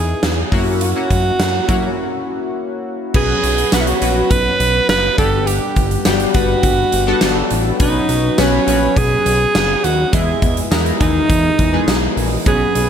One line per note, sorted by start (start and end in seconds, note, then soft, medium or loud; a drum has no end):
0.00 0.15 E2 loud
0.00 0.54 B3 medium
0.00 0.54 D#4 medium
0.00 0.53 E4 medium
0.00 0.52 G#4 medium
0.00 0.54 G#4 loud
0.23 0.44 E2 medium
0.23 snare loud
0.23 closed hi-hat medium
0.52 0.94 F#2 loud
0.52 0.88 A#3 medium
0.52 0.88 C#4 medium
0.52 0.89 E4 medium
0.52 0.89 F#4 loud
0.52 kick loud
0.52 open hi-hat medium
0.81 2.52 F#4 loud
0.81 closed hi-hat loud
0.96 1.56 A#3 medium
0.96 1.56 C#4 medium
0.96 1.56 E4 medium
0.96 1.56 F#4 medium
1.10 1.31 F#2 loud
1.10 kick medium
1.10 closed hi-hat medium
1.40 1.60 F#2 loud
1.40 snare loud
1.40 closed hi-hat medium
1.68 1.90 F#3 medium
1.68 2.64 A#3 medium
1.68 2.65 C#4 medium
1.68 2.65 E4 medium
1.68 2.65 F#4 loud
1.68 kick loud
1.68 closed hi-hat medium
3.14 3.35 B1 loud
3.14 3.62 F#3 medium
3.14 3.62 B3 medium
3.14 3.63 C#4 medium
3.14 3.63 F#4 medium
3.14 3.75 G#4 loud
3.14 3.63 B4 medium
3.14 kick loud
3.14 crash loud
3.43 3.64 B1 loud
3.43 closed hi-hat medium
3.58 closed hi-hat medium
3.72 3.93 B1 loud
3.72 3.96 F#3 medium
3.72 3.97 B3 medium
3.72 3.97 C#4 medium
3.72 3.97 F#4 medium
3.72 3.81 F#4 medium
3.72 3.97 B4 medium
3.72 snare loud
3.72 closed hi-hat loud
3.72 tambourine medium
3.80 3.89 E4 medium
3.87 4.33 F#4 medium
3.87 closed hi-hat medium
4.02 4.23 A#1 medium
4.02 4.98 F#3 medium
4.02 4.98 B3 medium
4.02 4.98 C#4 medium
4.02 4.98 F#4 medium
4.02 4.98 B4 medium
4.02 closed hi-hat medium
4.31 4.52 B1 loud
4.31 4.89 B4 loud
4.31 kick loud
4.31 closed hi-hat loud
4.60 4.81 B1 loud
4.60 closed hi-hat medium
4.89 5.10 F#1 loud
4.89 5.16 B4 loud
4.89 snare loud
4.89 closed hi-hat medium
4.89 tambourine medium
5.18 5.60 G1 loud
5.18 5.90 G3 medium
5.18 5.90 B3 medium
5.18 5.91 D4 medium
5.18 5.91 G4 medium
5.18 5.48 A4 loud
5.18 5.91 F#5 medium
5.18 kick loud
5.18 closed hi-hat medium
5.46 6.05 G4 medium
5.46 closed hi-hat loud
5.76 5.97 G1 loud
5.76 kick medium
5.76 closed hi-hat medium
5.91 closed hi-hat medium
6.05 6.27 G1 loud
6.05 6.29 G3 medium
6.05 6.30 B3 medium
6.05 6.30 D4 medium
6.05 6.30 F#4 medium
6.05 6.30 G4 medium
6.05 snare loud
6.05 closed hi-hat loud
6.05 tambourine medium
6.20 closed hi-hat medium
6.34 6.56 G1 loud
6.34 6.95 G3 medium
6.34 6.95 B3 medium
6.34 6.95 D4 medium
6.34 7.47 F#4 loud
6.34 6.95 F#4 medium
6.34 6.95 B4 medium
6.34 kick loud
6.34 closed hi-hat medium
6.63 6.85 G1 loud
6.63 kick loud
6.63 closed hi-hat loud
6.92 7.14 G1 loud
6.92 closed hi-hat medium
7.07 7.67 G3 medium
7.07 7.67 B3 medium
7.07 7.68 D4 medium
7.07 7.68 F#4 medium
7.07 7.68 A4 loud
7.21 7.43 G1 medium
7.21 snare loud
7.21 closed hi-hat medium
7.21 tambourine medium
7.50 7.72 A1 loud
7.50 closed hi-hat medium
7.80 8.01 B1 loud
7.80 8.28 F#3 medium
7.80 8.28 B3 medium
7.80 8.28 C#4 medium
7.80 8.41 D#4 medium
7.80 8.29 F#4 medium
7.80 8.29 B4 medium
7.80 kick loud
7.80 closed hi-hat loud
8.09 8.30 B1 loud
8.09 closed hi-hat medium
8.38 8.59 B1 loud
8.38 8.62 F#3 medium
8.38 8.62 B3 medium
8.38 8.63 C#4 medium
8.38 8.99 C#4 loud
8.38 8.63 F#4 medium
8.38 8.63 B4 medium
8.38 snare loud
8.38 closed hi-hat loud
8.38 tambourine medium
8.67 8.88 A#1 medium
8.67 9.64 F#3 medium
8.67 9.64 B3 medium
8.67 9.64 C#4 medium
8.67 9.64 F#4 medium
8.67 9.64 B4 medium
8.67 closed hi-hat medium
8.96 9.17 B1 loud
8.96 9.86 G#4 loud
8.96 kick loud
8.96 closed hi-hat loud
9.26 9.47 B1 medium
9.26 closed hi-hat medium
9.55 9.76 F#1 medium
9.55 snare loud
9.55 closed hi-hat medium
9.55 tambourine medium
9.84 10.05 D#2 medium
9.84 10.13 F#4 loud
9.84 closed hi-hat medium
10.12 10.34 E2 loud
10.12 10.61 G#3 medium
10.12 10.61 B3 medium
10.12 10.61 E4 medium
10.12 10.68 E4 medium
10.12 10.62 G#4 medium
10.12 10.61 D#5 medium
10.12 kick loud
10.12 closed hi-hat loud
10.42 10.63 E2 loud
10.42 kick medium
10.42 closed hi-hat medium
10.57 closed hi-hat medium
10.71 10.92 E2 loud
10.71 10.95 G#3 medium
10.71 10.95 B3 medium
10.71 10.96 D#4 medium
10.71 10.96 E4 medium
10.71 10.96 A#4 medium
10.71 snare loud
10.71 closed hi-hat medium
10.71 tambourine medium
10.86 closed hi-hat medium
11.00 11.22 D#2 medium
11.00 11.61 E3 medium
11.00 11.61 G#3 medium
11.00 11.61 B3 medium
11.00 11.61 D#4 medium
11.00 12.13 D#4 loud
11.00 11.61 G#4 medium
11.00 kick loud
11.00 closed hi-hat medium
11.30 11.51 E2 loud
11.30 kick loud
11.30 closed hi-hat loud
11.59 11.80 E2 loud
11.59 kick loud
11.59 closed hi-hat medium
11.73 12.34 E3 medium
11.73 12.33 G#3 medium
11.73 12.33 B3 medium
11.73 12.34 D#4 medium
11.73 12.34 G#4 loud
11.87 12.09 B1 loud
11.87 snare loud
11.87 closed hi-hat medium
11.87 tambourine medium
12.17 12.38 A#1 medium
12.17 open hi-hat medium
12.46 12.67 B1 loud
12.46 12.89 F#3 medium
12.46 12.89 B3 medium
12.46 12.89 C#4 medium
12.46 12.89 F#4 medium
12.46 12.89 G#4 loud
12.46 12.89 B4 medium
12.46 kick loud
12.46 closed hi-hat loud
12.75 12.89 B1 loud
12.75 closed hi-hat medium